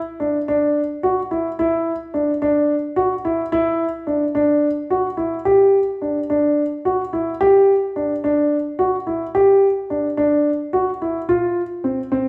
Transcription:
0.20 D4
0.48 D4
1.03 F#4
1.31 E4
1.59 E4
2.14 D4
2.42 D4
2.96 F#4
3.25 E4
3.52 E4
4.07 D4
4.35 D4
4.90 F#4
5.17 E4
5.45 G4
6.02 D4
6.30 D4
6.85 F#4
7.13 E4
7.41 G4
7.96 D4
8.24 D4
8.79 F#4
9.07 E4
9.35 G4
9.90 D4
10.17 D4
10.73 F#4
11.02 E4
11.29 F4
11.84 C4
12.12 C4

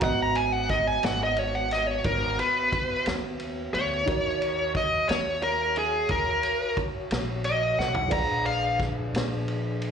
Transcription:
0.00 G#1 B3 F#4 D#5 F#5 A#5, kick, ride
0.05 B3 F#4
0.23 A#5
0.35 G#5, ride
0.52 F#5
0.69 D#5, kick, snare, ride
0.87 G#5
1.03 G#1 F#5, snare, ride
1.23 D#5
1.36 C#5, ride
1.55 F#5
1.71 D#5, snare, ride
1.87 C#5
2.04 G#1 A#4, kick, ride
2.39 B4, ride
2.72 kick, ride
3.06 D#2, snare, ride
3.39 ride
3.74 D2 C#5, ride
4.06 D#2 D#4 F#4 A#4 C#5, kick, ride
4.42 ride
4.75 D#5, kick, snare, ride
5.09 D#2 C#5, snare, ride
5.42 A#4, ride
5.76 G#4, ride
6.09 D#2 A#4, kick, ride
6.43 ride
6.77 kick, ride
7.11 A#1, snare, ride
7.44 D#5, ride
7.79 B1 F#5, snare
7.95 floor tom
8.08 D4 F4 G#4 B4 D5 A#5, kick, ride, crash
8.12 A#1 G#4
8.46 F5, ride
8.79 kick, snare, ride
9.13 A#1, snare, ride
9.48 ride
9.82 ride

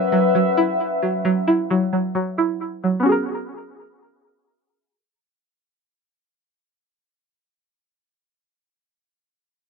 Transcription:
Already playing: F#3 C#4 E4 B4 E5 F#5
0.12 F#3
0.35 F#3
0.57 E4
1.03 F#3
1.25 F#3
1.48 E4
1.71 F#3
1.93 F#3
2.15 F#3
2.38 E4
2.84 F#3
3.00 B3 C#4
3.06 F#4 G#4
3.12 A#4

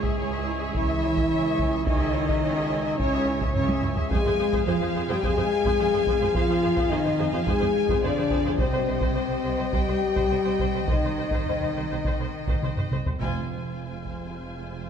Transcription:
Already playing: C#2 G#2 G#3 G#4
0.02 G#4 E5 C#6, taiko
0.17 C#2 E4 C#5 G#5
0.31 G#4 E5 C#6
0.45 E4 C#5 G#5
0.60 G#4 E5 C#6
0.74 C#2 E3 E4 C#5 E5 G#5, taiko
0.89 G#4 E5 C#6
1.03 E4 C#5 G#5
1.16 G#4 E5 C#6, taiko
1.30 C#2 E4 C#5 G#5
1.44 G#4 E5 C#6
1.57 E4 C#5 G#5, taiko
1.71 G#4 E5 C#6
1.85 C#2 D#3 D#4 E4 C#5 D#5 G#5, taiko
1.99 G#4 E5 C#6
2.13 E4 C#5 G#5
2.27 G#4 E5 C#6, taiko
2.41 C#2 E4 C#5 G#5
2.55 G#4 E5 C#6
2.70 E4 C#5 G#5
2.83 G#4 E5 C#6
2.98 C#2 C#3 C#4 E4 C#5 G#5, taiko
3.13 G#4 E5 C#6
3.26 E4 C#5 G#5
3.40 G#4 E5 C#6, taiko
3.54 C#2 C#3 C#4 E4 C#5 G#5, taiko low-mid
3.69 G#4 E5 C#6, taiko high
3.82 E4 C#5 G#5, taiko low-mid
3.97 G#4 E5 C#6, taiko low
4.10 F2 G#3 G#4 C5 F5 G#5, taiko
4.25 F2 G#4 C5
4.39 F2 G#4 C5
4.52 F2 G#4 C5, taiko
4.67 F2 F3 F4 G#4 C5 F5
4.81 F2 G#4 C5
4.95 F2 G#4 C5
5.09 F2 G3 G4 G#4 C5 G5
5.23 F2 G#3 G#4 C5 G#5, taiko
5.37 F2 G#4 C5
5.65 F2 G#4 C5, taiko
5.79 F2 G#4 C5
5.93 F2 G#4 C5
6.07 F2 G#4 C5, taiko
6.21 F2 G#4 C5
6.35 F2 F3 F4 G#4 C5 F5, taiko
6.49 F2 G#4 C5
6.63 F2 G#4 C5
6.76 F2 G#4 C5, taiko
6.90 F2 D#3 D#4 G#4 C5 D#5
7.04 F2 G#4 C5
7.18 F2 G#4 C5
7.32 F2 F3 F4 G#4 C5 F5
7.46 F2 G#3 G#4 C5 G#5, taiko
7.60 F2 G#4 C5
7.89 F2 G#4 C5, taiko
8.03 F2 D3 D4 G#4 C5 D5
8.16 F2 G#4 C5
8.30 F2 G#4 C5, taiko
8.45 F2 G#4 C5
8.58 C2 C3 C4 C5 D#5 G5, taiko
8.73 C2 C5
8.88 C2 C5
9.01 C2 C5, taiko
9.16 C2 C5
9.30 C2 C5
9.43 C2 C5
9.58 C2 C5
9.72 C2 G3 G4 C5 G5, taiko
9.88 C2 C5
10.16 C2 C5, taiko
10.30 C2 C5
10.45 C2 C5
10.59 C2 C5, taiko
10.74 C2 C5
10.88 C2 D#3 D#4 C5 D#5, taiko
11.03 C2 C5
11.18 C2 C5
11.31 C2 C5, taiko
11.46 C2 C5, taiko low
11.60 C2 C5, taiko low
11.76 C2 C5
11.90 C2 C5
12.04 C2 C5, taiko
12.19 C2 C5
12.48 C2 C5, taiko
12.62 C2 C5, taiko mid
12.77 C2 C5, taiko low-mid
12.91 C2 C5, taiko mid
13.05 C2 C5, taiko low
13.20 F1 F2 G#3 C4 F4 C5 G#5, taiko
14.05 taiko

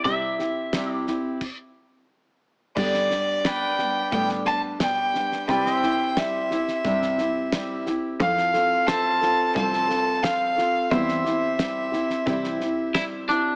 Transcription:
0.04 C3 G3 C4 E4 G4 E5, kick, snare
0.39 C4 E4 G4, snare
0.73 C3 G3 C4 E4 G4, kick, snare, hi-hat pedal
0.93 D5
1.07 C4 E4 G4, snare
1.41 kick, crash
2.76 G2 D3 G3 B3 D4 G4 D5, kick, snare, crash
2.94 snare
3.10 G3 B3 D4 G4, snare
3.44 G3 B3 D4 G4 B4 D5 G5, kick, snare, hi-hat pedal
3.79 G3 B3 D4 G4, snare
4.12 G2 A2 D3 G3 B3 D4 G4 G5, kick, snare
4.29 snare
4.45 G3 B3 D4 G4 A5, snare
4.79 B2 G3 B3 D4 G4 G5, kick, snare, hi-hat pedal
5.14 G3 B3 D4 G4, snare
5.32 snare
5.48 C3 G3 C4 E4 G4 B4 D5 G5, kick, snare
5.66 C5, snare
5.75 E5
5.82 C4 E4 G4, snare
6.16 G3 C4 E4 G4 E5, kick, snare, hi-hat pedal
6.51 C4 E4 G4, snare
6.68 snare
6.85 G2 C3 G3 C4 E4 G4, kick, snare
7.02 snare
7.18 C4 E4 G4, snare
7.52 G3 C4 E4 G4, kick, snare, hi-hat pedal
7.86 C4 E4 G4, snare
8.20 F2 F3 C4 F4 A4 F5, kick, snare
8.38 snare
8.54 C4 F4 A4, snare
8.87 F3 C4 F4 A4 C5 E5 A5, kick, snare, hi-hat pedal
9.09 F5
9.20 C4 F4 A4, snare
9.55 C2 F3 C4 F4 A4 A5, kick, snare
9.73 snare
9.88 C4 F4 A4, snare
10.22 F3 C4 F4 A4 F5, kick, snare, hi-hat pedal
10.56 C4 F4 A4, snare
10.90 E2 E3 G3 C4 E4 G4 C5 E5, kick, snare
11.08 snare
11.24 C4 E4 G4, snare
11.58 G3 C4 E4 G4, kick, snare, hi-hat pedal
11.92 C4 E4 G4, snare
12.10 snare
12.26 C3 E3 G3 C4 E4 G4, kick, snare
12.44 snare
12.59 C4 E4 G4, snare
12.94 G3 C4 E4 G4, kick, snare, hi-hat pedal
13.28 C4 D4 E4 G4, snare

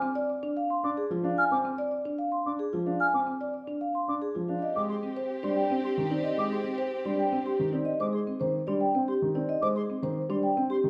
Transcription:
0.02 C4
0.15 D5
0.30 D5
0.43 D4
0.57 F5
0.70 C6
0.84 D4 D6
0.97 G#4
1.10 F3 F4
1.24 D4 F5
1.38 G#5 F6
1.51 C4 D6
1.65 C4
1.78 D5
1.91 D5
2.05 D4
2.18 F5
2.32 C6
2.46 D4 D6
2.59 G#4
2.73 F3 F4
2.86 D4 F5
3.00 G#5 F6
3.14 C4 D6
3.27 C4
3.41 D5
3.54 D5
3.67 D4
3.81 F5
3.95 C6
4.08 D4 D6
4.22 G#4
4.35 F3 F4
4.49 D4 F5
4.62 C4 G4 D#5
4.75 G#3 D6
4.89 G#4 C6
5.03 C4
5.16 C5
5.43 G3 D4 D5 C6
5.56 G5
5.70 C4
5.84 G4 C6
5.98 D#3
6.10 C4 D#4 D5
6.24 D#5
6.37 G#3 D6
6.51 G#4 C6
6.64 C4
6.78 C5
7.05 G3 D4 D5 C6
7.19 G5
7.32 C4
7.46 G4 C6
7.59 D#3
7.73 C4 D#4 D5
7.85 D#5
8.00 G#3 C5 D6
8.13 G#4 C6
8.27 C4
8.40 D#3 C5
8.67 G3 D4 D5 C6
8.81 G5
8.95 C4
9.08 G4 C6
9.22 D#3
9.35 C4 D#4 D5
9.49 D#5
9.61 G#3 C5 D6
9.75 G#4 C6
9.90 C4
10.03 D#3 C5
10.29 G3 D4 D5 C6
10.43 G5
10.57 C4
10.70 G4 C6
10.84 D#3

